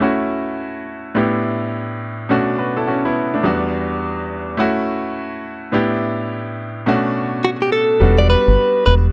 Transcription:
0.00 1.13 A3 medium
0.00 1.13 C#4 medium
0.00 1.13 E4 medium
0.00 1.14 F#4 medium
1.15 2.27 A2 medium
1.15 2.27 B3 medium
1.15 2.27 D4 medium
1.15 2.28 E4 medium
1.15 2.28 G4 medium
2.29 3.41 B2 medium
2.29 2.58 A3 medium
2.29 2.58 C#4 medium
2.29 2.58 D4 medium
2.29 2.57 F#4 medium
2.58 2.75 F#4 medium
2.58 2.75 B4 medium
2.77 2.87 E4 medium
2.77 2.86 A4 medium
2.87 3.04 C#4 medium
2.87 3.04 F#4 medium
3.05 3.32 B3 medium
3.05 3.32 E4 medium
3.34 3.61 A3 soft
3.34 3.43 D4 medium
3.43 4.55 E2 medium
3.43 4.56 G3 medium
3.43 4.56 B3 medium
3.43 4.56 D4 medium
3.43 4.57 F#4 medium
4.57 5.70 A3 medium
4.57 5.70 C#4 medium
4.57 5.71 E4 medium
4.57 5.71 F#4 medium
5.72 6.84 A2 medium
5.72 6.84 B3 medium
5.72 6.85 D4 medium
5.72 6.85 E4 medium
5.72 6.85 G4 medium
6.86 7.98 B2 medium
6.86 7.99 A3 medium
6.86 7.99 C#4 medium
6.86 7.99 D4 medium
6.86 8.00 F#4 medium
7.45 7.50 F#4 medium
7.62 7.72 G4 medium
7.72 8.20 A4 medium
8.00 8.34 E1 loud
8.00 9.12 G3 medium
8.00 9.12 B3 medium
8.00 9.12 D4 medium
8.00 9.12 F#4 medium
8.18 8.29 D5 loud
8.30 8.85 B4 loud
8.48 8.55 G1 medium
8.86 9.07 E1 loud
8.86 8.94 B4 medium

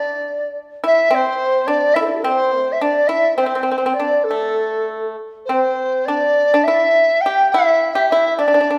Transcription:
0.00 0.51 D4 medium
0.00 0.57 D5 medium
0.84 1.10 E4 medium
0.84 1.16 E5 loud
1.11 1.63 C4 medium
1.11 1.68 C5 medium
1.67 1.93 D4 medium
1.67 1.95 D5 medium
1.94 2.22 E4 medium
1.94 2.00 E5 loud
2.01 2.05 A4 soft
2.05 2.10 D4 soft
2.05 2.08 C5 soft
2.09 2.13 E4 soft
2.14 2.17 G4 soft
2.18 2.25 A4 soft
2.23 2.59 C4 medium
2.23 2.73 C5 medium
2.59 2.77 A3 medium
2.72 2.83 E5 medium
2.81 3.08 D4 medium
2.81 3.08 D5 medium
3.07 3.36 E4 medium
3.07 3.35 E5 medium
3.36 3.45 C4 medium
3.36 3.95 C5 medium
3.46 3.53 C4 soft
3.55 3.61 C4 medium
3.63 3.69 C4 soft
3.71 3.77 C4 medium
3.78 3.84 C4 soft
3.86 3.92 C4 medium
3.93 4.25 D5 medium
4.00 4.26 D4 medium
4.23 5.16 A4 medium
4.31 5.15 A3 medium
5.45 6.07 C5 medium
5.49 6.04 C4 medium
6.05 6.49 D4 medium
6.05 6.64 D5 medium
6.54 6.67 D4 medium
6.63 7.22 E5 loud
6.68 7.21 E4 medium
7.21 7.50 G5 medium
7.26 7.52 G4 medium
7.51 7.94 E4 medium
7.51 8.05 E5 medium
7.95 8.09 G4 medium
8.09 8.38 E4 medium
8.09 8.36 E5 medium
8.37 8.45 D4 medium
8.37 8.77 D5 medium
8.48 8.53 D4 soft
8.54 8.59 D4 medium
8.61 8.67 D4 soft
8.70 8.76 D4 medium

